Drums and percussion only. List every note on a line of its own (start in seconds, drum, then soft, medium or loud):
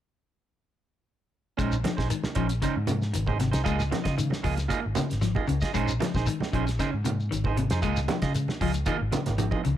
1.59 kick medium
1.59 closed hi-hat medium
1.59 shekere medium
1.72 shekere medium
1.84 snare medium
1.84 closed hi-hat soft
1.84 high conga medium
1.98 kick medium
1.98 snare medium
1.98 shekere soft
2.10 closed hi-hat medium
2.10 shekere medium
2.23 snare medium
2.23 high conga medium
2.35 kick medium
2.35 closed hi-hat soft
2.35 shekere soft
2.49 closed hi-hat soft
2.49 shekere medium
2.62 kick medium
2.62 snare soft
2.62 closed hi-hat medium
2.62 shekere medium
2.87 closed hi-hat soft
2.87 high conga medium
2.87 shekere medium
3.02 snare soft
3.02 shekere soft
3.14 closed hi-hat medium
3.14 shekere medium
3.26 kick medium
3.26 high conga medium
3.39 snare soft
3.39 closed hi-hat medium
3.39 high conga medium
3.39 shekere soft
3.53 snare medium
3.53 closed hi-hat soft
3.53 shekere medium
3.66 kick medium
3.66 closed hi-hat medium
3.66 shekere medium
3.80 snare soft
3.80 shekere medium
3.92 snare medium
3.92 closed hi-hat soft
3.92 high conga medium
4.04 kick medium
4.04 snare medium
4.04 closed hi-hat soft
4.04 high conga medium
4.04 shekere soft
4.18 closed hi-hat medium
4.18 shekere medium
4.30 snare medium
4.30 high conga medium
4.44 kick medium
4.44 open hi-hat medium
4.44 shekere soft
4.57 snare soft
4.57 closed hi-hat soft
4.57 shekere medium
4.69 kick medium
4.69 closed hi-hat medium
4.69 high conga medium
4.69 shekere medium
4.95 snare soft
4.95 closed hi-hat soft
4.95 high conga medium
4.95 shekere medium
5.10 snare soft
5.10 closed hi-hat soft
5.10 shekere soft
5.21 snare soft
5.21 closed hi-hat medium
5.21 shekere medium
5.35 kick medium
5.35 high conga medium
5.47 closed hi-hat soft
5.47 high conga medium
5.47 shekere soft
5.61 kick medium
5.61 snare medium
5.61 closed hi-hat soft
5.61 shekere medium
5.74 kick medium
5.74 closed hi-hat medium
5.74 shekere medium
5.88 shekere medium
6.00 snare medium
6.00 closed hi-hat soft
6.00 high conga medium
6.14 kick medium
6.14 snare medium
6.14 high conga medium
6.14 shekere soft
6.26 closed hi-hat medium
6.26 shekere medium
6.40 snare medium
6.40 high conga medium
6.53 kick medium
6.53 closed hi-hat soft
6.53 shekere soft
6.67 snare soft
6.67 closed hi-hat soft
6.67 shekere medium
6.79 kick medium
6.79 snare soft
6.79 closed hi-hat medium
6.79 high conga medium
6.79 shekere medium
7.05 closed hi-hat medium
7.05 high conga medium
7.05 shekere medium
7.20 shekere soft
7.32 closed hi-hat medium
7.32 shekere medium
7.44 kick medium
7.44 high conga medium
7.57 closed hi-hat medium
7.57 high conga medium
7.57 shekere soft
7.70 snare medium
7.70 closed hi-hat medium
7.70 shekere medium
7.82 kick medium
7.82 closed hi-hat medium
7.82 shekere medium
7.97 snare soft
7.97 shekere medium
8.08 snare medium
8.08 closed hi-hat soft
8.08 high conga medium
8.22 kick medium
8.22 snare medium
8.22 closed hi-hat soft
8.22 high conga medium
8.22 shekere soft
8.34 closed hi-hat medium
8.34 shekere medium
8.48 snare medium
8.48 high conga medium
8.61 kick medium
8.61 open hi-hat medium
8.61 shekere soft
8.74 closed hi-hat soft
8.74 shekere medium
8.86 kick medium
8.86 closed hi-hat medium
8.86 high conga medium
8.86 shekere medium
9.12 snare soft
9.12 closed hi-hat soft
9.12 high conga medium
9.12 shekere medium
9.26 snare soft
9.26 closed hi-hat soft
9.26 high conga medium
9.26 shekere soft
9.38 closed hi-hat medium
9.38 high conga loud
9.38 shekere medium
9.51 kick medium
9.51 low conga medium
9.65 closed hi-hat soft
9.65 shekere soft